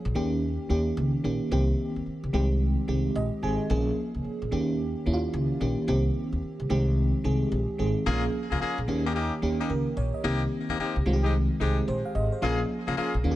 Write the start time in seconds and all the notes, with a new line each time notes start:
Already playing: F3 A#3 C#4 G#4
0.05 A#1
0.15 D#2 D#3 A#3 C#4 G4
0.69 D#2 D#3 A#3 C#4 G4
0.97 C#2
1.24 A#1 D#3 A#3 C#4 G4
1.51 C2 D#3 A#3 C4 G4
1.96 D#2
2.06 muted upright bass stroke
2.24 C2
2.33 C2 D#3 G#3 C4 G4
2.88 C2 D#3 G#3 C4 G4
3.15 A#1 D#5
3.42 G#1 D#3 G#3 C4 G#4 G#5
3.70 A#1 F3 A#3 C#4 G#4
4.14 C#2
4.24 muted upright bass stroke
4.42 A#1
4.51 D#2 D#3 A#3 C#4 G4
5.06 D#2 D#3 A#3 C#4 E4
5.13 F4
5.33 C#2
5.60 A#1 D#3 A#3 C#4 G4
5.87 C2 D#3 A#3 C4 G4
6.32 D#2
6.42 muted upright bass stroke
6.60 C2
6.69 C2 D#3 G#3 C4 G4
7.24 C2 D#3 G#3 C4 G#4
7.52 A#1
7.78 G#1 D#3 G#3 C4 G#4
8.05 A#1 F3 A#3 C#4 F4 G#4
8.50 C#2 A#3 C#4 F4 G#4
8.60 A#3 C#4 F4 G#4, muted upright bass stroke
8.78 A#1
8.88 D#2 D#3 A#3 C#4 G4
9.04 A#3 C#4 D#4 G4
9.14 A#3 C#4 D#4 G4
9.42 D#2 D#3 A#3 C#4 G4
9.59 A#3 C#4 D#4 G4
9.70 C#2 A#4
9.97 A#1 C#5
10.14 D#5
10.24 C2 D#3 A#3 C4 D#4 G4
10.68 D#2 A#3 C4 D#4 G4
10.78 A#3 C4 D#4 G4, muted upright bass stroke
10.96 C2
11.06 C2 D#3 G#3 C4 F4
11.13 G4
11.23 G#3 C4 D#4 G4
11.60 C2 D#3 G#3 C4 D#4 G4 G#4
11.88 A#1 C5
12.05 F5
12.15 G#1 D#5
12.32 C5
12.42 A#1 F3 A#3 C#4 F4 G#4
12.86 C#2 A#3 C#4 F4 G#4
12.96 A#3 C#4 F4 G#4, muted upright bass stroke
13.14 A#1
13.24 D#2 D#3 A#3 C#4 F4
13.31 G4